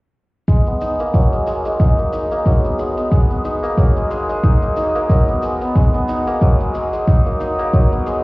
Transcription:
0.48 1.31 G#3 medium
0.48 kick medium
0.48 shaker soft
0.67 1.06 B3 medium
0.67 shaker soft
0.81 1.80 D#4 medium
0.81 shaker medium
1.00 1.98 A#3 medium
1.00 shaker soft
1.14 2.45 F#3 medium
1.14 kick medium
1.14 shaker soft
1.33 1.46 G#3 medium
1.33 shaker soft
1.47 1.64 G#3 medium
1.47 shaker medium
1.65 2.77 G#3 medium
1.65 shaker soft
1.80 2.12 D#4 medium
1.80 kick medium
1.80 shaker soft
1.98 2.31 A#3 medium
1.98 shaker soft
2.13 3.44 D#4 medium
2.13 shaker medium
2.31 2.70 A#3 medium
2.31 shaker soft
2.46 3.76 F#3 medium
2.46 kick medium
2.46 shaker soft
2.64 2.96 B3 medium
2.64 shaker soft
2.79 3.10 G#3 medium
2.79 shaker medium
2.97 3.29 B3 medium
2.97 shaker soft
3.11 3.95 G#3 medium
3.11 kick medium
3.11 shaker soft
3.30 3.69 B3 medium
3.30 shaker soft
3.44 4.43 D#4 medium
3.44 shaker medium
3.63 4.62 A#3 medium
3.63 shaker soft
3.77 5.08 F#3 medium
3.77 kick loud
3.77 shaker soft
3.96 4.09 G#3 medium
3.96 shaker soft
4.11 4.28 G#3 medium
4.11 shaker medium
4.29 5.41 G#3 medium
4.29 shaker soft
4.44 4.76 D#4 medium
4.44 kick loud
4.44 shaker soft
4.62 4.95 A#3 medium
4.62 shaker soft
4.77 6.08 D#4 medium
4.77 shaker medium
4.95 5.34 A#3 loud
4.95 shaker soft
5.10 6.40 F#3 medium
5.10 kick loud
5.10 shaker soft
5.28 5.61 B3 medium
5.28 shaker soft
5.42 5.74 G#3 medium
5.42 shaker medium
5.61 5.94 B3 medium
5.61 shaker soft
5.75 6.59 G#3 medium
5.75 kick medium
5.75 shaker soft
5.94 6.33 B3 medium
5.94 shaker soft
6.08 7.07 D#4 medium
6.08 shaker medium
6.27 7.25 A#3 medium
6.27 shaker soft
6.41 7.72 F#3 medium
6.41 kick loud
6.41 shaker soft
6.60 6.73 G#3 medium
6.60 shaker soft
6.74 6.92 G#3 medium
6.74 shaker medium
6.93 8.05 G#3 medium
6.93 shaker soft
7.07 7.40 D#4 medium
7.07 kick loud
7.07 shaker soft
7.26 7.58 A#3 medium
7.26 shaker soft
7.40 8.24 D#4 medium
7.40 shaker medium
7.59 7.98 A#3 medium
7.59 shaker soft
7.73 8.24 F#3 medium
7.73 kick loud
7.73 shaker soft
7.92 8.24 B3 medium
7.92 shaker soft
8.06 8.24 G#3 medium
8.06 shaker medium

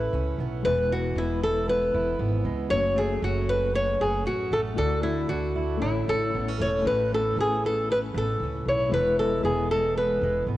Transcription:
0.00 0.11 A1 medium
0.00 0.64 A2 medium
0.00 0.59 A3 medium
0.00 0.12 C#4 medium
0.00 0.63 C#4 soft
0.00 0.60 E4 soft
0.00 1.43 E4 medium
0.00 0.36 B4 medium
0.00 0.61 B4 medium
0.13 0.37 C#2 medium
0.13 0.71 C#4 medium
0.38 0.62 B1 medium
0.38 0.91 B3 medium
0.63 1.12 E1 medium
0.63 2.70 E2 medium
0.63 2.66 G#3 medium
0.63 2.67 B3 medium
0.63 2.68 E4 medium
0.63 0.91 B4 medium
0.67 2.68 B4 medium
0.92 2.44 G#3 medium
0.92 1.18 F#4 medium
1.16 1.90 E1 medium
1.16 1.67 B3 medium
1.16 1.43 E4 medium
1.43 1.93 E4 medium
1.43 1.67 A4 medium
1.68 2.18 B3 medium
1.68 2.42 B4 medium
1.94 2.18 E1 medium
1.94 2.77 E4 medium
2.19 2.43 G#1 medium
2.19 2.77 B3 medium
2.45 2.69 C#2 medium
2.45 2.77 G#3 medium
2.70 3.19 F#1 loud
2.70 4.78 F#2 medium
2.70 4.73 A3 medium
2.70 4.74 C#4 medium
2.70 4.74 F#4 medium
2.70 2.97 C#5 medium
2.70 4.75 C#5 medium
2.96 4.51 A3 medium
2.96 3.22 G#4 medium
3.22 3.96 F#1 medium
3.22 3.73 C#4 medium
3.22 3.50 F#4 medium
3.49 4.00 F#4 medium
3.49 3.75 B4 medium
3.74 4.24 C#4 medium
3.74 3.99 C#5 medium
4.01 4.24 F#1 medium
4.01 4.84 F#4 medium
4.01 4.26 G#4 medium
4.25 4.49 A1 medium
4.25 4.83 C#4 medium
4.25 4.53 F#4 medium
4.51 4.75 A1 medium
4.51 5.04 A3 medium
4.51 4.60 A4 medium
4.74 5.25 D2 medium
4.74 5.81 D3 medium
4.74 5.76 A3 medium
4.74 5.78 E4 medium
4.74 5.79 F#4 medium
4.74 5.03 A4 medium
4.78 5.80 D5 medium
5.03 6.38 A3 soft
5.03 5.28 E4 medium
5.29 5.77 D2 medium
5.29 5.87 D4 medium
5.29 5.81 F#4 medium
5.56 6.08 E4 medium
5.78 6.81 A3 medium
5.78 6.82 C#4 medium
5.78 6.83 E4 medium
5.82 6.05 A1 medium
5.82 6.84 A2 medium
5.82 6.30 E4 medium
5.82 6.83 C#5 medium
6.08 6.31 A1 medium
6.08 8.68 E4 medium
6.08 6.56 A4 medium
6.34 6.58 A1 medium
6.34 6.48 B3 medium
6.48 6.91 C#4 soft
6.60 6.83 E1 medium
6.60 7.12 A3 soft
6.60 6.87 C#5 medium
6.82 7.33 A1 medium
6.82 8.92 A2 medium
6.82 8.87 A3 medium
6.82 8.87 C#4 medium
6.82 8.88 E4 medium
6.86 8.89 B4 medium
6.86 7.13 B4 medium
7.12 7.65 B3 medium
7.12 7.39 A4 medium
7.36 8.10 A1 medium
7.36 7.89 C#4 medium
7.41 7.65 G#4 medium
7.65 8.16 B3 soft
7.65 7.88 A4 medium
7.90 8.41 C#4 medium
7.90 7.98 B4 medium
8.14 8.38 A1 medium
8.14 9.19 B3 soft
8.14 8.68 A4 medium
8.40 8.64 C#2 medium
8.40 8.99 C#4 medium
8.65 8.89 B1 medium
8.65 10.57 E4 medium
8.65 8.93 C#5 medium
8.89 9.40 E1 medium
8.89 10.57 G#3 medium
8.89 10.57 B3 soft
8.89 10.57 E4 medium
8.89 10.57 B4 medium
8.93 10.57 E2 medium
8.93 9.19 B4 medium
9.19 9.70 G#3 medium
9.19 9.43 A4 medium
9.43 10.17 E1 medium
9.43 9.96 B3 medium
9.43 9.68 G#4 medium
9.71 10.22 G#3 medium
9.71 9.97 A4 medium
9.97 10.47 B3 medium
9.97 10.45 B4 medium
10.21 10.45 E1 medium
10.21 10.57 G#3 medium
10.47 10.57 G#1 medium
10.47 10.57 B3 medium

